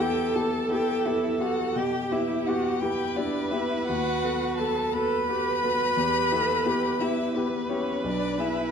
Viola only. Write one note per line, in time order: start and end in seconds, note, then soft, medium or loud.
0.00 1.79 A4 loud
1.77 2.86 G4 medium
2.85 4.94 B4 medium
4.95 5.28 A4 medium
5.29 5.63 G4 medium
5.64 6.00 F#4 medium
5.98 6.34 G4 medium
6.33 6.69 A4 medium
6.67 7.04 G4 medium
7.03 8.71 B4 medium